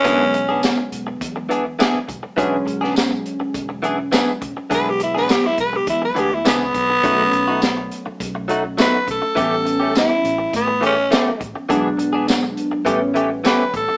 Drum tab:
HH |x-x-x-x-x-x-x-x-|x-x-x-x-x-x-x-x-|x-x-x-x-x-x-x-x-|x-x-x-x-x-x-x-x-|
TB |----x-------x---|----x-------x---|----x-------x---|----x-------x---|
SD |----o-------o---|---oo-------o---|---ooo------o---|----o-------o---|
BD |o-------o-----o-|o-------o-----o-|o-----o-o-----o-|o-------o-----o-|

HH |x-x-x-x-x-x-x-x-|x-x-x-x-x-x-x-x-|
TB |----x-------x---|----x-------x---|
SD |----o-------o---|----o-------o---|
BD |o-------o-----o-|o-------o-----o-|